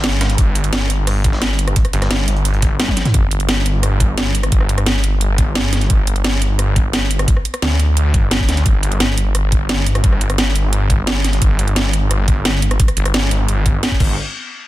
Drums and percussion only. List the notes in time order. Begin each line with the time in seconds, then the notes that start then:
0.04 snare, closed hi-hat
0.12 closed hi-hat
0.21 snare, closed hi-hat
0.30 closed hi-hat
0.38 kick, closed hi-hat
0.55 closed hi-hat
0.64 closed hi-hat
0.73 snare, closed hi-hat
0.90 closed hi-hat
1.07 cross-stick, closed hi-hat, open hi-hat
1.24 kick, closed hi-hat
1.33 snare
1.42 snare, closed hi-hat
1.59 closed hi-hat
1.68 cross-stick, closed hi-hat
1.76 kick, closed hi-hat
1.85 cross-stick, closed hi-hat
1.93 closed hi-hat
2.02 cross-stick, snare, closed hi-hat
2.11 snare, closed hi-hat
2.28 closed hi-hat
2.37 closed hi-hat
2.45 closed hi-hat
2.54 closed hi-hat
2.62 kick, closed hi-hat
2.80 snare, closed hi-hat, high tom
2.88 kick, high tom
2.97 snare, closed hi-hat
3.05 snare, closed hi-hat, mid tom
3.14 kick, closed hi-hat
3.31 closed hi-hat
3.40 closed hi-hat
3.49 snare, closed hi-hat
3.66 closed hi-hat
3.83 cross-stick, closed hi-hat
4.00 kick, closed hi-hat
4.18 snare, closed hi-hat
4.35 closed hi-hat
4.43 cross-stick, closed hi-hat
4.52 kick, closed hi-hat
4.61 cross-stick
4.69 closed hi-hat
4.78 cross-stick, closed hi-hat
4.86 snare, closed hi-hat
5.04 closed hi-hat
5.21 closed hi-hat
5.38 kick, closed hi-hat
5.55 snare, closed hi-hat
5.73 snare, closed hi-hat
5.81 closed hi-hat
5.90 kick, closed hi-hat
6.07 closed hi-hat
6.16 closed hi-hat
6.24 snare, closed hi-hat
6.42 closed hi-hat
6.59 cross-stick, closed hi-hat
6.76 kick, closed hi-hat
6.93 snare, closed hi-hat
7.11 closed hi-hat
7.19 cross-stick, closed hi-hat
7.28 kick, closed hi-hat
7.37 cross-stick
7.45 closed hi-hat
7.54 cross-stick, closed hi-hat
7.62 snare, closed hi-hat
7.80 closed hi-hat
7.97 closed hi-hat
8.14 kick, closed hi-hat
8.31 snare, closed hi-hat
8.40 kick
8.49 snare, closed hi-hat
8.57 closed hi-hat
8.66 kick, closed hi-hat
8.83 closed hi-hat
8.92 closed hi-hat
9.00 snare, closed hi-hat
9.18 closed hi-hat
9.35 cross-stick, closed hi-hat
9.52 kick, closed hi-hat
9.69 snare, closed hi-hat
9.87 closed hi-hat
9.95 cross-stick, closed hi-hat
10.04 kick, closed hi-hat
10.12 cross-stick
10.21 closed hi-hat
10.30 cross-stick, closed hi-hat
10.38 snare, closed hi-hat
10.56 closed hi-hat
10.73 closed hi-hat
10.90 kick, closed hi-hat
11.07 snare, closed hi-hat
11.24 snare, closed hi-hat
11.33 closed hi-hat
11.42 kick, closed hi-hat
11.59 closed hi-hat
11.68 closed hi-hat
11.76 snare, closed hi-hat
11.93 closed hi-hat
12.11 cross-stick, closed hi-hat
12.28 kick, closed hi-hat
12.45 snare, closed hi-hat
12.62 closed hi-hat
12.71 cross-stick, closed hi-hat
12.80 kick, closed hi-hat
12.88 cross-stick, closed hi-hat
12.97 closed hi-hat
13.06 cross-stick, closed hi-hat
13.14 snare, closed hi-hat
13.31 closed hi-hat
13.48 closed hi-hat
13.66 kick, closed hi-hat
13.83 snare, closed hi-hat
13.92 kick
14.00 kick, crash